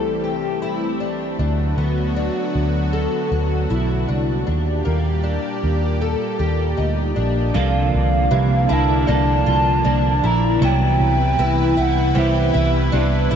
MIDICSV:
0, 0, Header, 1, 7, 480
1, 0, Start_track
1, 0, Tempo, 769231
1, 868, Time_signature, 4, 2, 24, 8
1, 8335, End_track
2, 0, Start_track
2, 0, Title_t, "Soft synth lead"
2, 0, Program_c, 0, 80
2, 4736, Note_on_c, 0, 77, 103
2, 5448, Note_on_c, 0, 81, 94
2, 5457, Note_off_c, 0, 77, 0
2, 5678, Note_off_c, 0, 81, 0
2, 5687, Note_on_c, 0, 81, 109
2, 6401, Note_on_c, 0, 82, 103
2, 6410, Note_off_c, 0, 81, 0
2, 6634, Note_off_c, 0, 82, 0
2, 6644, Note_on_c, 0, 79, 107
2, 7367, Note_on_c, 0, 78, 90
2, 7376, Note_off_c, 0, 79, 0
2, 7603, Note_on_c, 0, 76, 84
2, 7612, Note_off_c, 0, 78, 0
2, 8076, Note_off_c, 0, 76, 0
2, 8335, End_track
3, 0, Start_track
3, 0, Title_t, "Synth bell"
3, 0, Program_c, 1, 98
3, 5188, Note_on_c, 1, 67, 66
3, 5661, Note_on_c, 1, 74, 72
3, 6631, Note_off_c, 1, 67, 0
3, 6839, Note_off_c, 1, 74, 0
3, 7108, Note_on_c, 1, 71, 61
3, 8071, Note_on_c, 1, 67, 86
3, 8335, Note_off_c, 1, 67, 0
3, 8335, Note_off_c, 1, 71, 0
3, 8335, End_track
4, 0, Start_track
4, 0, Title_t, "Twelve-string acoustic guitar"
4, 0, Program_c, 2, 25
4, 0, Note_on_c, 2, 69, 68
4, 144, Note_off_c, 2, 69, 0
4, 148, Note_on_c, 2, 67, 58
4, 384, Note_off_c, 2, 67, 0
4, 387, Note_on_c, 2, 64, 70
4, 626, Note_on_c, 2, 62, 66
4, 627, Note_off_c, 2, 64, 0
4, 861, Note_off_c, 2, 62, 0
4, 868, Note_on_c, 2, 62, 74
4, 1106, Note_off_c, 2, 62, 0
4, 1108, Note_on_c, 2, 59, 63
4, 1348, Note_off_c, 2, 59, 0
4, 1351, Note_on_c, 2, 62, 69
4, 1827, Note_on_c, 2, 69, 72
4, 1829, Note_off_c, 2, 62, 0
4, 2067, Note_off_c, 2, 69, 0
4, 2069, Note_on_c, 2, 66, 66
4, 2308, Note_off_c, 2, 66, 0
4, 2310, Note_on_c, 2, 64, 70
4, 2549, Note_off_c, 2, 64, 0
4, 2549, Note_on_c, 2, 62, 65
4, 2780, Note_off_c, 2, 62, 0
4, 2788, Note_on_c, 2, 62, 71
4, 3025, Note_on_c, 2, 58, 69
4, 3028, Note_off_c, 2, 62, 0
4, 3266, Note_on_c, 2, 62, 63
4, 3267, Note_off_c, 2, 58, 0
4, 3747, Note_off_c, 2, 62, 0
4, 3754, Note_on_c, 2, 69, 75
4, 3986, Note_off_c, 2, 69, 0
4, 3989, Note_on_c, 2, 67, 64
4, 4227, Note_on_c, 2, 63, 67
4, 4228, Note_off_c, 2, 67, 0
4, 4465, Note_off_c, 2, 63, 0
4, 4467, Note_on_c, 2, 62, 66
4, 4707, Note_on_c, 2, 65, 87
4, 4708, Note_off_c, 2, 62, 0
4, 5184, Note_on_c, 2, 52, 78
4, 5187, Note_off_c, 2, 65, 0
4, 5422, Note_on_c, 2, 64, 87
4, 5426, Note_off_c, 2, 52, 0
4, 5665, Note_off_c, 2, 64, 0
4, 5666, Note_on_c, 2, 62, 90
4, 5904, Note_on_c, 2, 65, 80
4, 5907, Note_off_c, 2, 62, 0
4, 6143, Note_on_c, 2, 62, 86
4, 6146, Note_off_c, 2, 65, 0
4, 6386, Note_off_c, 2, 62, 0
4, 6387, Note_on_c, 2, 64, 73
4, 6625, Note_on_c, 2, 54, 93
4, 6628, Note_off_c, 2, 64, 0
4, 7106, Note_on_c, 2, 64, 83
4, 7107, Note_off_c, 2, 54, 0
4, 7337, Note_off_c, 2, 64, 0
4, 7345, Note_on_c, 2, 64, 81
4, 7581, Note_on_c, 2, 60, 92
4, 7586, Note_off_c, 2, 64, 0
4, 7823, Note_on_c, 2, 64, 78
4, 7825, Note_off_c, 2, 60, 0
4, 8063, Note_on_c, 2, 62, 86
4, 8065, Note_off_c, 2, 64, 0
4, 8304, Note_on_c, 2, 64, 84
4, 8305, Note_off_c, 2, 62, 0
4, 8335, Note_off_c, 2, 64, 0
4, 8335, End_track
5, 0, Start_track
5, 0, Title_t, "Clean electric guitar"
5, 0, Program_c, 3, 27
5, 4706, Note_on_c, 3, 48, 72
5, 4710, Note_on_c, 3, 53, 79
5, 4714, Note_on_c, 3, 58, 79
5, 4718, Note_on_c, 3, 62, 89
5, 4722, Note_on_c, 3, 69, 89
5, 5414, Note_off_c, 3, 69, 0
5, 5421, Note_on_c, 3, 69, 50
5, 5427, Note_off_c, 3, 48, 0
5, 5427, Note_off_c, 3, 62, 0
5, 5429, Note_off_c, 3, 53, 0
5, 5431, Note_off_c, 3, 58, 0
5, 5434, Note_on_c, 3, 62, 42
5, 5443, Note_on_c, 3, 58, 43
5, 5660, Note_off_c, 3, 58, 0
5, 5661, Note_on_c, 3, 53, 59
5, 5665, Note_off_c, 3, 69, 0
5, 5667, Note_on_c, 3, 58, 64
5, 5671, Note_off_c, 3, 62, 0
5, 5678, Note_on_c, 3, 62, 59
5, 5683, Note_on_c, 3, 69, 63
5, 6130, Note_off_c, 3, 53, 0
5, 6138, Note_on_c, 3, 53, 63
5, 6143, Note_off_c, 3, 58, 0
5, 6148, Note_off_c, 3, 62, 0
5, 6150, Note_on_c, 3, 58, 58
5, 6155, Note_on_c, 3, 62, 63
5, 6156, Note_off_c, 3, 69, 0
5, 6609, Note_on_c, 3, 48, 84
5, 6621, Note_off_c, 3, 53, 0
5, 6624, Note_on_c, 3, 55, 84
5, 6629, Note_off_c, 3, 58, 0
5, 6632, Note_off_c, 3, 62, 0
5, 6632, Note_on_c, 3, 59, 84
5, 6640, Note_on_c, 3, 64, 86
5, 7573, Note_off_c, 3, 55, 0
5, 7579, Note_off_c, 3, 48, 0
5, 7581, Note_off_c, 3, 59, 0
5, 7581, Note_on_c, 3, 55, 61
5, 7589, Note_on_c, 3, 59, 62
5, 7591, Note_off_c, 3, 64, 0
5, 7598, Note_on_c, 3, 64, 62
5, 7604, Note_on_c, 3, 67, 64
5, 8057, Note_off_c, 3, 55, 0
5, 8062, Note_off_c, 3, 59, 0
5, 8064, Note_on_c, 3, 55, 65
5, 8069, Note_on_c, 3, 59, 73
5, 8073, Note_off_c, 3, 64, 0
5, 8076, Note_off_c, 3, 67, 0
5, 8081, Note_on_c, 3, 64, 65
5, 8087, Note_on_c, 3, 67, 69
5, 8335, Note_off_c, 3, 55, 0
5, 8335, Note_off_c, 3, 59, 0
5, 8335, Note_off_c, 3, 64, 0
5, 8335, Note_off_c, 3, 67, 0
5, 8335, End_track
6, 0, Start_track
6, 0, Title_t, "Analog synth pad"
6, 0, Program_c, 4, 89
6, 0, Note_on_c, 4, 36, 75
6, 0, Note_on_c, 4, 52, 77
6, 0, Note_on_c, 4, 55, 70
6, 0, Note_on_c, 4, 57, 69
6, 0, Note_on_c, 4, 60, 75
6, 0, Note_on_c, 4, 67, 84
6, 842, Note_off_c, 4, 60, 0
6, 843, Note_off_c, 4, 55, 0
6, 844, Note_off_c, 4, 67, 0
6, 849, Note_off_c, 4, 52, 0
6, 850, Note_off_c, 4, 36, 0
6, 865, Note_on_c, 4, 54, 71
6, 865, Note_on_c, 4, 66, 85
6, 866, Note_on_c, 4, 50, 75
6, 866, Note_on_c, 4, 59, 70
6, 2765, Note_off_c, 4, 57, 0
6, 2768, Note_off_c, 4, 50, 0
6, 2768, Note_off_c, 4, 54, 0
6, 2768, Note_off_c, 4, 59, 0
6, 2768, Note_off_c, 4, 66, 0
6, 2786, Note_on_c, 4, 74, 66
6, 2788, Note_on_c, 4, 46, 79
6, 2789, Note_on_c, 4, 58, 71
6, 2790, Note_on_c, 4, 55, 69
6, 2793, Note_on_c, 4, 67, 89
6, 4688, Note_off_c, 4, 74, 0
6, 4689, Note_off_c, 4, 46, 0
6, 4690, Note_off_c, 4, 55, 0
6, 4690, Note_off_c, 4, 58, 0
6, 4691, Note_off_c, 4, 67, 0
6, 4704, Note_on_c, 4, 62, 90
6, 4705, Note_on_c, 4, 50, 85
6, 4706, Note_on_c, 4, 58, 77
6, 6607, Note_off_c, 4, 50, 0
6, 6607, Note_off_c, 4, 62, 0
6, 6608, Note_off_c, 4, 58, 0
6, 6629, Note_on_c, 4, 64, 97
6, 6632, Note_on_c, 4, 52, 82
6, 6633, Note_on_c, 4, 71, 74
6, 8335, Note_off_c, 4, 52, 0
6, 8335, Note_off_c, 4, 64, 0
6, 8335, Note_off_c, 4, 71, 0
6, 8335, End_track
7, 0, Start_track
7, 0, Title_t, "Picked electric bass"
7, 0, Program_c, 5, 34
7, 870, Note_on_c, 5, 38, 94
7, 1080, Note_off_c, 5, 38, 0
7, 1109, Note_on_c, 5, 38, 87
7, 1425, Note_off_c, 5, 38, 0
7, 1594, Note_on_c, 5, 38, 81
7, 1908, Note_off_c, 5, 38, 0
7, 2069, Note_on_c, 5, 38, 72
7, 2280, Note_off_c, 5, 38, 0
7, 2313, Note_on_c, 5, 35, 73
7, 2522, Note_off_c, 5, 35, 0
7, 2551, Note_on_c, 5, 36, 69
7, 2761, Note_off_c, 5, 36, 0
7, 2796, Note_on_c, 5, 39, 67
7, 3003, Note_off_c, 5, 39, 0
7, 3037, Note_on_c, 5, 39, 85
7, 3350, Note_off_c, 5, 39, 0
7, 3518, Note_on_c, 5, 39, 82
7, 3830, Note_off_c, 5, 39, 0
7, 3993, Note_on_c, 5, 39, 81
7, 4202, Note_off_c, 5, 39, 0
7, 4233, Note_on_c, 5, 38, 65
7, 4442, Note_off_c, 5, 38, 0
7, 4474, Note_on_c, 5, 34, 63
7, 4683, Note_off_c, 5, 34, 0
7, 4718, Note_on_c, 5, 36, 93
7, 4925, Note_off_c, 5, 36, 0
7, 4958, Note_on_c, 5, 36, 106
7, 5165, Note_off_c, 5, 36, 0
7, 5189, Note_on_c, 5, 36, 96
7, 5400, Note_off_c, 5, 36, 0
7, 5431, Note_on_c, 5, 36, 87
7, 5641, Note_off_c, 5, 36, 0
7, 5672, Note_on_c, 5, 36, 88
7, 5881, Note_off_c, 5, 36, 0
7, 5910, Note_on_c, 5, 36, 103
7, 6121, Note_off_c, 5, 36, 0
7, 6150, Note_on_c, 5, 36, 98
7, 6360, Note_off_c, 5, 36, 0
7, 6390, Note_on_c, 5, 34, 75
7, 6600, Note_off_c, 5, 34, 0
7, 6628, Note_on_c, 5, 36, 101
7, 6839, Note_off_c, 5, 36, 0
7, 6866, Note_on_c, 5, 36, 106
7, 7078, Note_off_c, 5, 36, 0
7, 7107, Note_on_c, 5, 36, 95
7, 7319, Note_off_c, 5, 36, 0
7, 7347, Note_on_c, 5, 36, 92
7, 7559, Note_off_c, 5, 36, 0
7, 7588, Note_on_c, 5, 36, 99
7, 7799, Note_off_c, 5, 36, 0
7, 7832, Note_on_c, 5, 36, 101
7, 8042, Note_off_c, 5, 36, 0
7, 8072, Note_on_c, 5, 36, 103
7, 8281, Note_off_c, 5, 36, 0
7, 8312, Note_on_c, 5, 35, 80
7, 8335, Note_off_c, 5, 35, 0
7, 8335, End_track
0, 0, End_of_file